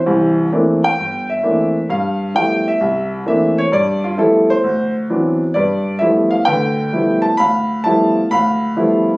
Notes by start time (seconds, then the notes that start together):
Already playing: C5
0.06 C2 E3
0.52 E3 A3 A#3 C4 D4
0.84 G5
0.98 G1
1.30 E5
1.43 E3 A3 A#3 C4 D4
1.90 G2 F5
2.34 F3 G3 A3 B3 E4 G5
2.68 E5
2.81 C2
3.26 E3 A3 A#3 C4 D4 E5
3.58 C#5
3.72 G2 D5
4.04 F4
4.18 F3 G3 A3 B3 E4 A4
4.50 C5
4.64 D2
5.09 E3 F#3 B3 C4 D4
5.54 G2 B4 D5
5.99 F3 G3 A3 B3 E4 E5
6.31 F5
6.45 D2 D3 B4 G5
6.92 F3 G3 A3 B3 E4
7.22 A5
7.37 D2 F5 B5
7.84 F3 G3 A3 B3 E4 A5
8.31 D2 F5 B5
8.77 F3 G3 A3 B3 E4